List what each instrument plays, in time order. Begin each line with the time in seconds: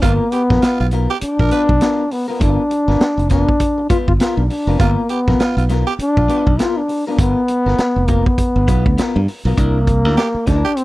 0.02 fingered electric bass G1, trombone A#3, clean electric guitar B3 F4 A#4, tenor saxophone F4, kick, closed hi-hat
0.32 trombone B3, tenor saxophone G4, muted clean electric guitar stroke, closed hi-hat
0.50 fingered electric bass A#1, clean electric guitar B3 F4 A#4, kick, snare
0.62 tenor saxophone F4, snare, closed hi-hat
0.80 fingered electric bass B1, tenor saxophone F4, muted clean electric guitar stroke
0.91 clean electric guitar B3 F4 A#4, closed hi-hat
1.10 tenor saxophone G4, muted clean electric guitar stroke
1.21 trombone D4, muted fingered electric bass stroke, closed hi-hat
1.39 fingered electric bass A#1, tenor saxophone A#4, muted clean electric guitar stroke, kick
1.51 clean electric guitar B3 F4 B4, tenor saxophone B4, closed hi-hat
1.69 fingered electric bass B1, muted clean electric guitar stroke, kick
1.81 clean electric guitar B3 F4 A#4, snare, closed hi-hat
2.11 trombone B3, muted clean electric guitar stroke, open hi-hat
2.28 trombone B3, clean electric guitar B3 F4 A#4
2.40 fingered electric bass G1, clean electric guitar B3 F4 A#4, trombone D4, kick, closed hi-hat
2.70 muted clean electric guitar stroke, closed hi-hat
2.88 fingered electric bass G1, clean electric guitar B3 F4 A#4, snare
3.00 muted fingered electric bass stroke, snare, closed hi-hat
3.18 fingered electric bass F1, muted clean electric guitar stroke, closed hi-hat
3.30 clean electric guitar B3 F4 A#4, trombone D4, kick, snare, closed hi-hat
3.48 muted clean electric guitar stroke, kick
3.60 kick, closed hi-hat
3.78 muted clean electric guitar stroke
3.89 clean electric guitar B3 F4 B4, trombone F4, muted fingered electric bass stroke, kick, closed hi-hat
4.08 fingered electric bass G1, trombone F4, muted clean electric guitar stroke, kick
4.19 clean electric guitar B3 F4 A#4, trombone F4, muted fingered electric bass stroke, snare, closed hi-hat
4.37 fingered electric bass B1, trombone D4
4.50 trombone D4, muted clean electric guitar stroke, open hi-hat
4.67 fingered electric bass F1, clean electric guitar B3 F4 A#4
4.79 fingered electric bass G1, trombone A#3, clean electric guitar B3 F4 A#4, tenor saxophone F4, kick, closed hi-hat
5.09 trombone B3, tenor saxophone G4, muted clean electric guitar stroke, closed hi-hat
5.28 fingered electric bass A#1, clean electric guitar B3 F4 A#4, kick, snare
5.39 tenor saxophone F4, muted fingered electric bass stroke, snare, closed hi-hat
5.57 fingered electric bass B1, tenor saxophone F4, muted clean electric guitar stroke, closed hi-hat
5.69 clean electric guitar B3 F4 A#4, snare, closed hi-hat
5.87 tenor saxophone G4, muted clean electric guitar stroke
5.99 trombone D4, muted fingered electric bass stroke, closed hi-hat
6.17 fingered electric bass A#1, tenor saxophone F4, muted clean electric guitar stroke, kick
6.28 clean electric guitar B3 F4 B4, tenor saxophone G4, closed hi-hat
6.47 fingered electric bass B1, muted clean electric guitar stroke, kick
6.59 clean electric guitar B3 F4 A#4, trombone F4, snare, closed hi-hat
6.77 trombone D4
6.89 muted clean electric guitar stroke, open hi-hat
7.07 clean electric guitar B3 F4 A#4, trombone D4
7.18 fingered electric bass G1, clean electric guitar B3 F4 A#4, trombone B3, kick, closed hi-hat
7.48 muted clean electric guitar stroke, closed hi-hat
7.66 fingered electric bass G1, clean electric guitar B3 F4 A#4, snare
7.78 muted fingered electric bass stroke, snare, closed hi-hat
7.96 fingered electric bass F1, muted clean electric guitar stroke
8.08 trombone A#3, clean electric guitar B3 F4 A#4, kick, closed hi-hat
8.26 trombone B3, muted clean electric guitar stroke, kick
8.38 kick, closed hi-hat
8.56 fingered electric bass G1, muted clean electric guitar stroke
8.68 fingered electric bass B1, clean electric guitar B3 F4 B4, kick, closed hi-hat
8.85 fingered electric bass D2, muted clean electric guitar stroke, kick
8.98 clean electric guitar B3 F4 A#4, snare, closed hi-hat
9.16 fingered electric bass G2
9.28 muted clean electric guitar stroke, open hi-hat
9.45 fingered electric bass B1, clean electric guitar B3 F4 A#4
9.57 fingered electric bass C2, trombone A#3, clean electric guitar D4 E4 A#4, kick, closed hi-hat
9.87 muted clean electric guitar stroke, kick, closed hi-hat
10.05 fingered electric bass D2, clean electric guitar D4 E4 A#4, snare
10.17 tenor saxophone G4, snare, closed hi-hat
10.34 muted fingered electric bass stroke, muted clean electric guitar stroke
10.47 fingered electric bass D2, clean electric guitar D4 E4 A#4, trombone D4, kick, snare, closed hi-hat
10.65 tenor saxophone G4, muted clean electric guitar stroke
10.77 trombone C4, closed hi-hat